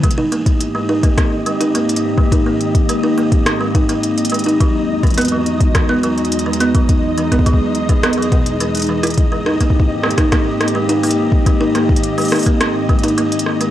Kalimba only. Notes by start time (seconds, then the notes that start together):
0.03 G#3
0.18 D#4
0.32 A#3
0.75 G#3
0.89 D#4
1.03 A#3
1.46 G#3
1.61 D#4
1.75 A#3
2.18 G#3
2.32 D#4
2.46 A#3
2.89 G#3
3.03 D#4
3.18 A#3
3.61 G#3
3.75 D#4
3.89 A#3
4.32 G#3
4.46 D#4
4.60 F#3
5.03 E3
5.18 B3
5.32 F#3
5.75 E3
5.89 B3
6.03 F#3
6.46 E3
6.61 B3
6.75 F#3
7.18 E3
7.32 B3
7.46 F#3
7.89 E3
8.03 B3
8.18 F#3
8.32 B2
8.61 E3
8.89 E3
9.03 E4
9.32 G#3
9.46 D#4
9.61 A#3
10.03 G#3
10.18 D#4
10.32 A#3
10.75 G#3
10.89 D#4
11.04 A#3
11.46 G#3
11.61 D#4
11.75 A#3
12.18 G#3
12.32 D#4
12.46 A#3
12.89 G#3
13.04 D#4
13.18 A#3
13.61 G#3